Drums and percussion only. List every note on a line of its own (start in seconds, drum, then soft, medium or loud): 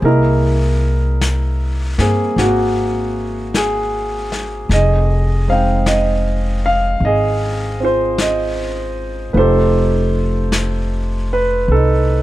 0.04 brush sweep soft
1.21 brush sweep soft
1.21 snare soft
1.21 hi-hat pedal medium
1.99 snare soft
2.38 brush sweep soft
2.38 snare soft
3.54 brush sweep soft
3.54 snare soft
3.54 hi-hat pedal soft
4.32 snare soft
4.71 brush sweep soft
4.71 snare soft
5.86 brush sweep soft
5.86 snare soft
5.86 hi-hat pedal soft
7.01 brush sweep soft
8.18 brush sweep soft
8.18 snare soft
8.18 hi-hat pedal soft
9.35 brush sweep soft
10.52 brush sweep soft
10.52 snare soft
10.52 hi-hat pedal soft
11.69 brush sweep soft